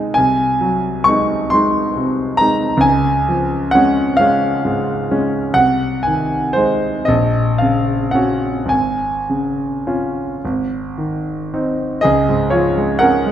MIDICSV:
0, 0, Header, 1, 2, 480
1, 0, Start_track
1, 0, Key_signature, -5, "major"
1, 0, Tempo, 892857
1, 87, Time_signature, 6, 3, 24, 8
1, 2009, Tempo, 914634
1, 2969, Tempo, 1016949
1, 3929, Tempo, 1090909
1, 4409, Tempo, 1165049
1, 4889, Tempo, 1092896
1, 5849, Tempo, 988468
1, 6468, End_track
2, 0, Start_track
2, 0, Title_t, "Grand piano"
2, 0, Program_c, 0, 0
2, 0, Control_c, 0, 64, 127
2, 0, Note_on_c, 0, 36, 53
2, 0, Note_on_c, 0, 48, 41
2, 0, Note_on_c, 0, 56, 43
2, 0, Note_on_c, 0, 63, 41
2, 0, Note_on_c, 0, 79, 66
2, 0, Note_on_c, 0, 80, 82
2, 67, Note_off_c, 0, 56, 0
2, 68, Note_off_c, 0, 36, 0
2, 68, Note_off_c, 0, 63, 0
2, 68, Note_off_c, 0, 80, 0
2, 76, Note_on_c, 0, 80, 88
2, 96, Control_c, 0, 64, 0
2, 96, Note_on_c, 0, 36, 51
2, 99, Note_off_c, 0, 48, 0
2, 102, Note_off_c, 0, 79, 0
2, 176, Control_c, 0, 64, 127
2, 327, Note_on_c, 0, 54, 38
2, 560, Note_on_c, 0, 85, 93
2, 570, Note_off_c, 0, 80, 0
2, 577, Note_on_c, 0, 56, 43
2, 583, Note_on_c, 0, 63, 48
2, 722, Note_off_c, 0, 54, 0
2, 799, Note_off_c, 0, 56, 0
2, 802, Note_off_c, 0, 63, 0
2, 807, Note_on_c, 0, 84, 85
2, 812, Note_off_c, 0, 85, 0
2, 825, Note_on_c, 0, 56, 43
2, 827, Note_on_c, 0, 63, 49
2, 1038, Note_off_c, 0, 56, 0
2, 1039, Note_off_c, 0, 63, 0
2, 1055, Note_on_c, 0, 48, 43
2, 1276, Note_on_c, 0, 82, 96
2, 1284, Note_off_c, 0, 84, 0
2, 1292, Note_on_c, 0, 56, 40
2, 1294, Note_on_c, 0, 63, 46
2, 1431, Note_off_c, 0, 48, 0
2, 1490, Note_on_c, 0, 37, 58
2, 1506, Note_off_c, 0, 56, 0
2, 1507, Note_off_c, 0, 63, 0
2, 1509, Note_off_c, 0, 36, 0
2, 1510, Note_on_c, 0, 80, 86
2, 1519, Note_off_c, 0, 82, 0
2, 1536, Control_c, 0, 64, 0
2, 1623, Control_c, 0, 64, 127
2, 1766, Note_on_c, 0, 53, 45
2, 1996, Note_on_c, 0, 78, 97
2, 2002, Note_off_c, 0, 80, 0
2, 2014, Note_on_c, 0, 61, 50
2, 2015, Note_on_c, 0, 56, 47
2, 2153, Note_off_c, 0, 53, 0
2, 2229, Note_off_c, 0, 56, 0
2, 2229, Note_off_c, 0, 61, 0
2, 2235, Note_on_c, 0, 77, 90
2, 2241, Note_off_c, 0, 78, 0
2, 2250, Note_on_c, 0, 56, 46
2, 2250, Note_on_c, 0, 61, 49
2, 2466, Note_off_c, 0, 56, 0
2, 2466, Note_off_c, 0, 61, 0
2, 2487, Note_on_c, 0, 44, 45
2, 2729, Note_on_c, 0, 56, 41
2, 2731, Note_on_c, 0, 61, 47
2, 2872, Note_off_c, 0, 44, 0
2, 2931, Note_off_c, 0, 37, 0
2, 2951, Note_off_c, 0, 56, 0
2, 2952, Note_off_c, 0, 61, 0
2, 2955, Note_on_c, 0, 36, 57
2, 2955, Note_on_c, 0, 78, 97
2, 2963, Note_off_c, 0, 77, 0
2, 2979, Control_c, 0, 64, 0
2, 3059, Control_c, 0, 64, 127
2, 3187, Note_on_c, 0, 80, 69
2, 3193, Note_off_c, 0, 78, 0
2, 3206, Note_on_c, 0, 51, 42
2, 3424, Note_on_c, 0, 72, 78
2, 3432, Note_off_c, 0, 80, 0
2, 3439, Note_on_c, 0, 63, 45
2, 3440, Note_on_c, 0, 56, 42
2, 3588, Note_off_c, 0, 51, 0
2, 3657, Note_off_c, 0, 36, 0
2, 3664, Note_off_c, 0, 56, 0
2, 3664, Note_off_c, 0, 63, 0
2, 3670, Note_on_c, 0, 75, 79
2, 3676, Note_off_c, 0, 72, 0
2, 3684, Note_on_c, 0, 34, 59
2, 3693, Control_c, 0, 64, 0
2, 3777, Control_c, 0, 64, 127
2, 3921, Note_on_c, 0, 77, 62
2, 3924, Note_off_c, 0, 75, 0
2, 3937, Note_on_c, 0, 49, 37
2, 4155, Note_on_c, 0, 78, 72
2, 4160, Note_off_c, 0, 77, 0
2, 4170, Note_on_c, 0, 61, 36
2, 4171, Note_on_c, 0, 66, 41
2, 4313, Note_off_c, 0, 49, 0
2, 4393, Note_off_c, 0, 34, 0
2, 4394, Note_on_c, 0, 32, 44
2, 4395, Note_off_c, 0, 61, 0
2, 4396, Note_off_c, 0, 66, 0
2, 4405, Note_off_c, 0, 78, 0
2, 4409, Note_on_c, 0, 80, 71
2, 4420, Control_c, 0, 64, 0
2, 4511, Control_c, 0, 64, 127
2, 4658, Note_on_c, 0, 49, 34
2, 4895, Note_on_c, 0, 61, 36
2, 4895, Note_on_c, 0, 65, 39
2, 5042, Note_off_c, 0, 49, 0
2, 5110, Note_off_c, 0, 32, 0
2, 5121, Note_off_c, 0, 61, 0
2, 5121, Note_off_c, 0, 65, 0
2, 5144, Control_c, 0, 64, 0
2, 5148, Note_on_c, 0, 32, 50
2, 5221, Control_c, 0, 64, 127
2, 5382, Note_on_c, 0, 51, 37
2, 5618, Note_off_c, 0, 80, 0
2, 5627, Note_on_c, 0, 60, 34
2, 5628, Note_on_c, 0, 63, 39
2, 5763, Note_off_c, 0, 51, 0
2, 5836, Note_off_c, 0, 60, 0
2, 5836, Note_on_c, 0, 75, 89
2, 5837, Note_off_c, 0, 63, 0
2, 5838, Note_off_c, 0, 32, 0
2, 5842, Note_on_c, 0, 68, 65
2, 5851, Note_on_c, 0, 37, 58
2, 5858, Control_c, 0, 64, 0
2, 5944, Control_c, 0, 64, 127
2, 5969, Note_on_c, 0, 44, 43
2, 6070, Note_off_c, 0, 68, 0
2, 6073, Note_on_c, 0, 73, 65
2, 6080, Note_on_c, 0, 65, 47
2, 6084, Note_off_c, 0, 75, 0
2, 6087, Note_on_c, 0, 53, 41
2, 6163, Note_off_c, 0, 44, 0
2, 6205, Note_on_c, 0, 56, 44
2, 6281, Note_off_c, 0, 53, 0
2, 6308, Note_off_c, 0, 65, 0
2, 6308, Note_on_c, 0, 78, 93
2, 6315, Note_on_c, 0, 70, 67
2, 6322, Note_off_c, 0, 73, 0
2, 6325, Note_on_c, 0, 61, 50
2, 6399, Note_off_c, 0, 56, 0
2, 6441, Note_on_c, 0, 56, 49
2, 6468, Note_off_c, 0, 37, 0
2, 6468, Note_off_c, 0, 56, 0
2, 6468, Note_off_c, 0, 61, 0
2, 6468, Note_off_c, 0, 70, 0
2, 6468, Note_off_c, 0, 78, 0
2, 6468, End_track
0, 0, End_of_file